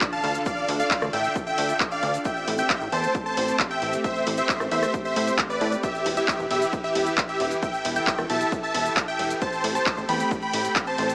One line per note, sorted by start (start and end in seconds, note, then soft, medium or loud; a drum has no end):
0.00 2.22 D3 medium
0.00 2.21 D4 medium
0.00 2.21 F4 medium
0.00 2.22 A4 medium
0.00 kick loud
0.00 clap loud
0.00 closed hi-hat medium
0.00 shaker medium
0.12 0.34 F5 medium
0.12 0.34 A5 loud
0.12 shaker soft
0.24 0.38 D2 medium
0.24 open hi-hat medium
0.35 closed hi-hat medium
0.35 shaker medium
0.46 0.68 D5 medium
0.46 0.68 F5 loud
0.46 0.68 F5 medium
0.46 kick loud
0.46 closed hi-hat medium
0.46 shaker medium
0.57 shaker soft
0.68 0.83 D2 loud
0.68 open hi-hat loud
0.80 1.02 D5 medium
0.80 1.02 F5 medium
0.80 closed hi-hat medium
0.80 shaker medium
0.91 kick loud
0.91 clap loud
0.91 closed hi-hat medium
0.91 shaker medium
1.02 1.09 D2 loud
1.02 cross-stick medium
1.02 shaker soft
1.13 1.28 A1 medium
1.13 1.35 E5 medium
1.13 1.35 G5 medium
1.13 1.35 G5 loud
1.13 open hi-hat medium
1.24 closed hi-hat medium
1.24 shaker medium
1.36 kick loud
1.36 closed hi-hat medium
1.36 shaker medium
1.47 1.76 E5 medium
1.47 1.76 G5 loud
1.47 shaker soft
1.58 1.73 D2 medium
1.58 open hi-hat loud
1.69 closed hi-hat medium
1.69 shaker medium
1.80 kick loud
1.80 clap loud
1.80 closed hi-hat medium
1.80 shaker medium
1.91 2.14 D5 medium
1.91 2.14 F5 loud
1.91 shaker soft
2.03 2.18 D2 medium
2.03 open hi-hat medium
2.14 closed hi-hat medium
2.14 shaker medium
2.25 5.80 A3 medium
2.25 5.80 C4 medium
2.25 9.38 G4 medium
2.25 2.47 E5 medium
2.25 2.47 G5 loud
2.25 kick loud
2.25 closed hi-hat medium
2.25 shaker medium
2.36 shaker soft
2.48 2.62 A1 loud
2.48 open hi-hat loud
2.58 2.81 E5 medium
2.58 2.81 G5 medium
2.58 2.81 G5 loud
2.58 closed hi-hat medium
2.58 shaker medium
2.70 kick loud
2.70 clap loud
2.70 closed hi-hat medium
2.70 shaker medium
2.81 2.89 A1 loud
2.81 shaker soft
2.92 3.07 E2 medium
2.92 3.14 C5 medium
2.92 3.14 A5 medium
2.92 open hi-hat medium
3.04 closed hi-hat medium
3.04 shaker medium
3.15 kick loud
3.15 closed hi-hat medium
3.15 shaker medium
3.26 3.55 C5 medium
3.26 3.55 A5 loud
3.26 shaker soft
3.37 3.52 A1 medium
3.37 open hi-hat loud
3.48 closed hi-hat medium
3.48 shaker medium
3.59 kick loud
3.59 clap loud
3.59 closed hi-hat medium
3.59 shaker medium
3.70 3.93 E5 medium
3.70 3.93 G5 loud
3.70 shaker soft
3.82 3.97 A1 medium
3.82 open hi-hat medium
3.93 closed hi-hat medium
3.93 shaker medium
4.04 4.26 C5 medium
4.04 4.26 E5 loud
4.04 kick loud
4.04 closed hi-hat medium
4.04 shaker medium
4.16 shaker soft
4.27 4.41 A1 loud
4.27 open hi-hat loud
4.37 4.60 C5 medium
4.37 4.60 E5 medium
4.37 4.60 E5 loud
4.37 closed hi-hat medium
4.37 shaker medium
4.49 kick loud
4.49 clap loud
4.49 closed hi-hat medium
4.49 shaker medium
4.60 4.68 A1 loud
4.60 cross-stick medium
4.60 shaker soft
4.71 4.86 E2 medium
4.71 4.93 C5 medium
4.71 4.93 E5 medium
4.71 4.93 E5 loud
4.71 open hi-hat medium
4.83 cross-stick medium
4.83 closed hi-hat medium
4.83 shaker medium
4.94 kick loud
4.94 closed hi-hat medium
4.94 shaker medium
5.05 5.34 C5 medium
5.05 5.34 E5 medium
5.05 5.34 E5 loud
5.05 shaker soft
5.16 5.31 A2 medium
5.16 open hi-hat loud
5.27 closed hi-hat medium
5.27 shaker medium
5.39 kick loud
5.39 clap loud
5.39 closed hi-hat medium
5.39 shaker medium
5.50 5.72 B4 medium
5.50 5.72 D5 loud
5.50 shaker soft
5.61 5.76 A2 medium
5.61 open hi-hat medium
5.72 closed hi-hat medium
5.72 shaker medium
5.83 9.38 E3 medium
5.83 9.38 E4 medium
5.83 6.05 G4 medium
5.83 7.61 B4 medium
5.83 6.05 E5 loud
5.83 kick loud
5.83 closed hi-hat medium
5.83 shaker medium
5.95 shaker soft
6.06 6.21 E1 loud
6.06 open hi-hat loud
6.06 ride medium
6.17 6.39 G4 medium
6.17 6.39 E5 loud
6.17 closed hi-hat medium
6.17 shaker medium
6.28 kick loud
6.28 clap loud
6.28 closed hi-hat medium
6.28 shaker medium
6.39 6.47 E1 loud
6.39 shaker soft
6.51 6.65 B1 medium
6.51 6.73 G4 medium
6.51 6.73 E5 medium
6.51 6.73 E5 loud
6.51 open hi-hat medium
6.51 ride medium
6.62 closed hi-hat medium
6.62 shaker medium
6.73 kick loud
6.73 closed hi-hat medium
6.73 shaker medium
6.84 7.13 G4 medium
6.84 7.13 E5 loud
6.84 7.13 E5 medium
6.84 shaker soft
6.95 7.10 E1 medium
6.95 open hi-hat loud
6.95 ride medium
7.06 closed hi-hat medium
7.06 shaker medium
7.17 kick loud
7.17 clap loud
7.17 closed hi-hat medium
7.17 shaker medium
7.28 7.51 G4 medium
7.28 7.51 E5 loud
7.28 shaker soft
7.40 7.55 E1 medium
7.40 open hi-hat medium
7.40 ride medium
7.51 closed hi-hat medium
7.51 shaker medium
7.62 9.40 A4 medium
7.62 7.84 E5 medium
7.62 7.84 G5 loud
7.62 7.85 G5 loud
7.62 kick loud
7.62 closed hi-hat medium
7.62 shaker medium
7.73 shaker soft
7.85 8.00 E1 loud
7.85 open hi-hat loud
7.85 ride medium
7.96 8.18 E5 medium
7.96 8.18 G5 loud
7.96 closed hi-hat medium
7.96 shaker medium
8.07 kick loud
8.07 clap loud
8.07 closed hi-hat medium
8.07 shaker medium
8.18 8.26 E1 loud
8.18 cross-stick medium
8.18 shaker soft
8.30 8.45 B1 medium
8.30 8.52 E5 medium
8.30 8.52 A5 loud
8.30 8.52 A5 medium
8.30 open hi-hat medium
8.30 ride medium
8.41 closed hi-hat medium
8.41 shaker medium
8.52 kick loud
8.52 closed hi-hat medium
8.52 shaker medium
8.63 8.93 E5 medium
8.63 8.93 A5 medium
8.63 8.93 A5 loud
8.63 shaker soft
8.74 8.89 E1 medium
8.74 open hi-hat loud
8.74 ride medium
8.86 closed hi-hat medium
8.86 shaker medium
8.97 kick loud
8.97 clap loud
8.97 closed hi-hat medium
8.97 shaker medium
9.08 9.30 E5 medium
9.08 9.30 G5 medium
9.08 shaker soft
9.19 9.34 E1 medium
9.19 open hi-hat loud
9.19 ride medium
9.30 closed hi-hat medium
9.30 shaker medium
9.41 11.15 A3 medium
9.41 11.15 C4 medium
9.41 11.15 G4 medium
9.41 9.64 C5 medium
9.41 9.64 A5 loud
9.41 9.64 A5 medium
9.41 kick loud
9.41 closed hi-hat medium
9.41 shaker medium
9.52 shaker soft
9.64 9.79 A1 loud
9.64 open hi-hat loud
9.64 ride medium
9.75 9.97 C5 medium
9.75 9.97 A5 medium
9.75 9.97 A5 loud
9.75 closed hi-hat medium
9.75 shaker medium
9.86 kick loud
9.86 clap loud
9.86 closed hi-hat medium
9.86 shaker medium
9.98 10.05 A1 loud
9.98 shaker soft
10.09 10.24 E2 medium
10.09 10.31 G5 medium
10.09 10.31 B5 loud
10.09 10.31 B5 medium
10.09 open hi-hat loud
10.09 ride medium
10.20 closed hi-hat medium
10.20 shaker medium
10.31 kick loud
10.31 closed hi-hat medium
10.31 shaker medium
10.42 10.72 G5 medium
10.42 10.72 B5 loud
10.42 shaker soft
10.53 10.68 A1 medium
10.53 open hi-hat loud
10.53 ride medium
10.65 closed hi-hat medium
10.65 shaker medium
10.76 kick loud
10.76 clap loud
10.76 closed hi-hat medium
10.76 shaker medium
10.87 11.09 C5 medium
10.87 11.09 A5 loud
10.87 shaker soft
10.98 11.13 A1 medium
10.98 open hi-hat medium
10.98 ride medium
11.09 closed hi-hat medium
11.09 shaker loud